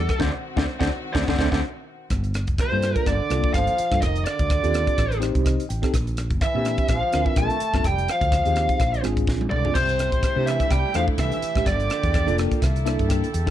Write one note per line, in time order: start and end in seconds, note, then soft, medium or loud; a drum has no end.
0.00 0.20 D3 medium
0.00 0.20 G3 medium
0.00 0.15 A3 medium
0.00 0.19 F#4 medium
0.00 0.20 A4 medium
0.09 kick medium
0.09 cross-stick medium
0.09 closed hi-hat soft
0.19 0.30 D2 loud
0.19 2.10 D#3 medium
0.19 0.28 A3 loud
0.19 0.28 C4 loud
0.19 2.10 C4 medium
0.19 0.28 D4 loud
0.19 2.10 F#4 medium
0.19 0.29 C5 loud
0.19 0.29 D5 loud
0.19 0.29 F#5 medium
0.19 kick loud
0.19 snare medium
0.56 0.65 D2 medium
0.56 0.64 A3 loud
0.56 0.64 C4 loud
0.56 0.64 D4 medium
0.56 0.64 C5 medium
0.56 0.64 D5 loud
0.56 0.64 F#5 medium
0.56 kick medium
0.56 snare medium
0.80 0.89 D2 loud
0.80 0.87 A3 medium
0.80 0.87 C4 medium
0.80 0.87 D4 loud
0.80 0.87 C5 medium
0.80 0.87 D5 medium
0.80 0.87 F#5 medium
0.80 kick medium
0.80 snare medium
1.13 1.25 D2 loud
1.13 1.24 A3 medium
1.13 1.24 C4 medium
1.13 1.24 D4 loud
1.13 1.23 C5 loud
1.13 1.23 D5 medium
1.13 1.23 F#5 medium
1.13 kick medium
1.13 snare loud
1.28 1.36 D2 loud
1.28 1.36 A3 medium
1.28 1.36 C4 medium
1.28 1.36 D4 medium
1.28 1.35 C5 medium
1.28 1.35 D5 medium
1.28 1.35 F#5 loud
1.28 kick medium
1.28 snare medium
1.39 1.49 D2 loud
1.39 1.48 A3 medium
1.39 1.48 C4 loud
1.39 1.48 D4 loud
1.39 1.48 C5 loud
1.39 1.48 D5 medium
1.39 1.47 F#5 medium
1.39 kick medium
1.39 snare medium
1.52 1.60 D2 loud
1.52 1.60 A3 medium
1.52 1.60 C4 loud
1.52 1.60 D4 medium
1.52 1.59 C5 medium
1.52 1.59 D5 medium
1.52 1.59 F#5 loud
1.52 kick medium
1.52 snare medium
2.10 2.48 G1 medium
2.10 kick medium
2.10 cross-stick medium
2.10 closed hi-hat medium
2.24 closed hi-hat soft
2.34 cross-stick medium
2.34 closed hi-hat medium
2.47 2.58 F1 medium
2.47 kick medium
2.47 closed hi-hat soft
2.58 3.04 C3 medium
2.58 3.04 C5 medium
2.58 kick loud
2.58 cross-stick medium
2.58 closed hi-hat medium
2.72 2.94 G2 medium
2.72 3.12 A#3 medium
2.72 3.12 D4 medium
2.72 3.12 F4 medium
2.72 3.13 A4 medium
2.82 cross-stick medium
2.82 closed hi-hat soft
2.96 kick medium
2.96 closed hi-hat soft
3.06 3.19 G1 medium
3.06 3.52 D3 medium
3.06 3.53 D5 medium
3.06 kick medium
3.06 cross-stick medium
3.06 closed hi-hat medium
3.30 3.43 C2 medium
3.30 3.72 A#3 medium
3.30 3.72 D4 medium
3.30 3.72 F4 medium
3.30 3.72 A4 medium
3.30 cross-stick medium
3.30 closed hi-hat medium
3.44 muted fretless electric bass stroke soft
3.44 kick medium
3.54 3.67 G1 medium
3.54 4.00 F3 medium
3.54 4.01 F5 medium
3.54 kick loud
3.54 cross-stick medium
3.54 closed hi-hat medium
3.67 closed hi-hat soft
3.78 muted fretless electric bass stroke soft
3.78 closed hi-hat medium
3.91 4.01 G2 medium
3.91 4.02 A#3 medium
3.91 4.02 D4 medium
3.91 4.02 F4 medium
3.91 4.02 A4 medium
3.91 kick medium
3.91 cross-stick medium
4.01 4.24 F1 medium
4.01 4.25 D#3 medium
4.01 4.25 D#5 loud
4.01 kick medium
4.01 cross-stick medium
4.01 closed hi-hat medium
4.16 closed hi-hat soft
4.25 5.18 D3 medium
4.25 5.17 D5 medium
4.25 cross-stick medium
4.25 closed hi-hat medium
4.39 4.61 D2 medium
4.39 kick medium
4.39 closed hi-hat soft
4.50 kick loud
4.50 cross-stick medium
4.50 closed hi-hat medium
4.63 4.86 D#2 medium
4.63 5.03 C4 medium
4.63 5.03 F4 medium
4.63 5.03 G4 medium
4.63 5.04 A4 medium
4.63 closed hi-hat soft
4.74 cross-stick medium
4.74 closed hi-hat medium
4.87 muted fretless electric bass stroke soft
4.87 kick medium
4.87 closed hi-hat soft
4.98 5.32 A1 medium
4.98 kick medium
4.98 cross-stick medium
4.98 closed hi-hat medium
5.12 closed hi-hat soft
5.20 5.62 C4 medium
5.20 5.62 D#4 medium
5.20 5.63 G4 medium
5.20 5.63 C5 medium
5.20 cross-stick medium
5.20 closed hi-hat medium
5.35 5.57 C2 medium
5.35 kick medium
5.35 closed hi-hat soft
5.45 5.67 D#5 medium
5.45 kick loud
5.45 cross-stick medium
5.45 closed hi-hat medium
5.60 closed hi-hat soft
5.69 5.82 A1 medium
5.69 5.92 G5 medium
5.69 closed hi-hat medium
5.82 5.93 C4 medium
5.82 5.93 D#4 medium
5.82 5.93 G4 medium
5.82 5.94 A4 medium
5.82 kick medium
5.82 cross-stick medium
5.82 closed hi-hat soft
5.94 6.32 A#1 loud
5.94 kick medium
5.94 cross-stick medium
5.94 closed hi-hat medium
6.07 closed hi-hat soft
6.17 cross-stick medium
6.17 closed hi-hat medium
6.30 6.40 G1 medium
6.30 kick medium
6.30 closed hi-hat soft
6.41 6.87 E3 medium
6.41 6.86 E5 medium
6.41 kick loud
6.41 cross-stick medium
6.41 closed hi-hat medium
6.54 6.77 A#2 medium
6.54 6.94 C4 medium
6.54 6.94 D4 medium
6.54 6.95 G4 medium
6.65 cross-stick medium
6.65 closed hi-hat medium
6.78 kick medium
6.78 closed hi-hat soft
6.88 7.01 A#1 medium
6.88 7.35 F3 medium
6.88 7.26 F5 medium
6.88 kick medium
6.88 cross-stick medium
6.88 closed hi-hat medium
7.12 7.25 D2 medium
7.12 7.54 C4 medium
7.12 7.55 D4 medium
7.12 7.55 F4 medium
7.12 7.55 A#4 medium
7.12 cross-stick medium
7.12 closed hi-hat medium
7.26 7.38 E5 medium
7.26 muted fretless electric bass stroke soft
7.26 kick medium
7.36 7.49 A#1 medium
7.36 7.83 A3 medium
7.36 7.82 A5 loud
7.36 kick loud
7.36 cross-stick medium
7.36 closed hi-hat medium
7.50 closed hi-hat soft
7.60 muted fretless electric bass stroke soft
7.60 closed hi-hat medium
7.73 7.84 G1 medium
7.73 7.84 C4 medium
7.73 7.84 D4 medium
7.73 7.85 F4 medium
7.73 7.85 A4 medium
7.73 kick medium
7.73 cross-stick medium
7.84 8.06 F1 medium
7.84 8.09 G3 medium
7.84 8.08 G5 loud
7.84 kick medium
7.84 cross-stick medium
7.84 closed hi-hat medium
7.98 closed hi-hat soft
8.08 9.02 F3 medium
8.08 9.01 F5 medium
8.08 cross-stick medium
8.08 closed hi-hat medium
8.21 8.43 D2 medium
8.21 kick medium
8.21 closed hi-hat soft
8.32 kick loud
8.32 cross-stick medium
8.32 closed hi-hat medium
8.45 8.67 D#2 medium
8.45 8.80 C4 medium
8.45 8.80 D#4 medium
8.45 8.80 G4 medium
8.45 8.80 G#4 medium
8.45 closed hi-hat soft
8.56 cross-stick medium
8.56 closed hi-hat medium
8.69 muted fretless electric bass stroke soft
8.69 kick medium
8.69 closed hi-hat soft
8.80 9.02 A#1 medium
8.80 kick medium
8.80 cross-stick medium
8.80 closed hi-hat medium
8.94 closed hi-hat soft
9.03 9.26 G#1 medium
9.03 9.45 C4 medium
9.03 9.45 D4 medium
9.03 9.45 F4 medium
9.03 9.46 G#4 medium
9.03 cross-stick medium
9.03 closed hi-hat medium
9.17 kick medium
9.17 closed hi-hat soft
9.27 9.49 A#1 medium
9.27 kick loud
9.27 snare medium
9.41 high tom medium
9.50 9.73 C2 medium
9.50 9.74 D3 medium
9.50 9.73 D5 medium
9.50 mid tom medium
9.64 9.75 C4 medium
9.64 9.76 D4 medium
9.64 9.76 F4 medium
9.64 9.76 G#4 medium
9.64 floor tom medium
9.74 10.12 C2 medium
9.74 10.43 C3 medium
9.74 11.65 C3 medium
9.74 11.65 A3 medium
9.74 11.66 E4 medium
9.74 10.49 C5 medium
9.74 kick medium
9.74 cross-stick medium
9.74 closed hi-hat medium
9.74 splash medium
9.89 closed hi-hat soft
9.99 cross-stick medium
9.99 closed hi-hat medium
10.12 10.22 A1 medium
10.12 kick medium
10.12 closed hi-hat soft
10.23 kick loud
10.23 cross-stick medium
10.23 closed hi-hat medium
10.36 10.58 C3 medium
10.36 10.76 A3 medium
10.36 10.77 D4 medium
10.36 10.77 E4 medium
10.36 10.77 G4 medium
10.46 10.69 E3 medium
10.46 10.72 E5 medium
10.46 cross-stick medium
10.46 closed hi-hat medium
10.60 kick medium
10.60 closed hi-hat soft
10.70 10.83 C2 medium
10.70 10.93 G3 medium
10.70 10.93 G5 loud
10.70 kick medium
10.70 cross-stick medium
10.70 closed hi-hat medium
10.94 11.07 E2 medium
10.94 11.05 F3 medium
10.94 11.36 A3 medium
10.94 11.37 D4 medium
10.94 11.37 E4 medium
10.94 11.37 A4 medium
10.94 11.02 F5 loud
10.94 cross-stick medium
10.94 closed hi-hat medium
11.08 muted fretless electric bass stroke soft
11.08 kick medium
11.18 11.31 C2 medium
11.18 11.64 E3 medium
11.18 11.66 E5 medium
11.18 kick loud
11.18 cross-stick medium
11.18 closed hi-hat medium
11.32 closed hi-hat soft
11.42 muted fretless electric bass stroke soft
11.42 closed hi-hat medium
11.55 11.66 A1 medium
11.55 11.66 A3 medium
11.55 11.67 D4 medium
11.55 11.67 E4 medium
11.55 11.67 G4 medium
11.55 kick medium
11.55 cross-stick medium
11.66 11.88 G1 medium
11.66 12.35 D3 medium
11.66 12.61 F3 medium
11.66 13.50 A#3 medium
11.66 12.61 G4 medium
11.66 12.34 D5 medium
11.66 kick medium
11.66 cross-stick medium
11.66 closed hi-hat medium
11.80 closed hi-hat soft
11.90 cross-stick medium
11.90 closed hi-hat medium
12.03 12.26 E2 medium
12.03 kick medium
12.03 closed hi-hat soft
12.14 kick loud
12.14 cross-stick medium
12.14 closed hi-hat medium
12.26 12.49 F1 loud
12.26 12.62 A#3 medium
12.26 12.62 D4 medium
12.26 12.62 F4 medium
12.26 12.62 A4 medium
12.26 closed hi-hat soft
12.38 12.60 D5 medium
12.38 cross-stick medium
12.38 closed hi-hat medium
12.52 kick medium
12.52 closed hi-hat soft
12.62 12.96 C2 medium
12.62 13.50 D3 medium
12.62 13.50 E4 medium
12.62 13.50 A4 medium
12.62 12.84 E5 medium
12.62 kick medium
12.62 cross-stick medium
12.62 closed hi-hat medium
12.76 closed hi-hat soft
12.85 13.27 A#3 medium
12.85 13.27 D4 medium
12.85 13.27 E4 medium
12.85 13.27 A4 medium
12.85 13.08 E5 medium
12.85 cross-stick medium
12.85 closed hi-hat medium
12.99 13.21 G2 medium
12.99 kick medium
12.99 closed hi-hat soft
13.09 13.32 G5 medium
13.09 kick loud
13.09 cross-stick medium
13.09 closed hi-hat medium
13.24 closed hi-hat soft
13.33 13.46 E2 medium
13.33 13.50 G5 medium
13.33 closed hi-hat medium
13.46 13.50 A#3 medium
13.46 13.50 D4 medium
13.46 13.50 E4 medium
13.46 kick medium